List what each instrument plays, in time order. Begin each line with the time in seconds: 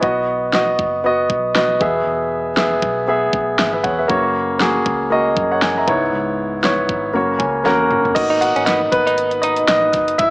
0.01 fingered electric bass B1, grand piano B3 F#4 D#5, kick
0.53 grand piano B3 F#4 D#5, snare
0.79 fingered electric bass F#1, kick
1.04 grand piano B3 F#4 D#5
1.29 fingered electric bass B1, kick
1.55 grand piano B3 F#4 D#5, snare
1.80 fingered electric bass E2, grand piano B2 B3 G#4 E5, kick
2.06 fingered electric bass E2
2.56 grand piano B3 G#4 E5, snare
2.82 fingered electric bass B1, kick
3.07 grand piano B3 G#4 E5
3.33 fingered electric bass B1, kick
3.59 fingered electric bass G#1, grand piano E5, snare
3.73 grand piano B4 E5
3.84 fingered electric bass E2, grand piano C#5 F#5, kick
3.99 grand piano B4 E5
4.08 fingered electric bass F#2, grand piano C#3 A#3 F#4 C#5, kick
4.59 grand piano A#3 F#4 G#4, snare
4.86 fingered electric bass C#2, kick
5.10 grand piano A#3 F#4 D#5
5.37 fingered electric bass F#2, kick
5.52 grand piano C#5 F#5
5.62 grand piano D#5 G#5, snare
5.78 grand piano E5 A#5
5.87 fingered electric bass C#2, grand piano G#2 B3 E4 C#5, kick
6.13 fingered electric bass C#2
6.63 grand piano B3 E4 C#5, snare
6.89 fingered electric bass G#1, kick
7.14 fingered electric bass F#2, grand piano C#3 A#3 F#4 C#5
7.39 fingered electric bass C#2, grand piano C#4 C#5 G#5, kick
7.64 fingered electric bass E2, grand piano A#3 C#4 F#4 A#4 C#5 F#5, snare
7.91 fingered electric bass F#1, mid tom
8.05 floor tom
8.15 fingered electric bass G#1, grand piano A#3 B3 D#4 F#4 D#5, kick, closed hi-hat, crash
8.30 clean electric guitar D#4
8.41 grand piano F#4 F#5, closed hi-hat
8.56 fingered electric bass G#1, clean electric guitar C#4, closed hi-hat
8.65 clean electric guitar B3, grand piano D#4 D#5, snare, closed hi-hat
8.92 fingered electric bass G#1, grand piano B3 B4, kick, closed hi-hat
9.07 clean electric guitar D#4, closed hi-hat
9.18 closed hi-hat
9.31 closed hi-hat
9.42 grand piano D#4 D#5, clean electric guitar D#4, closed hi-hat
9.56 closed hi-hat
9.68 fingered electric bass A#1, grand piano D#4 D#5, snare, closed hi-hat
9.93 fingered electric bass F#1, kick, snare, closed hi-hat
10.08 closed hi-hat
10.18 fingered electric bass G#1, grand piano E4 E5, kick, closed hi-hat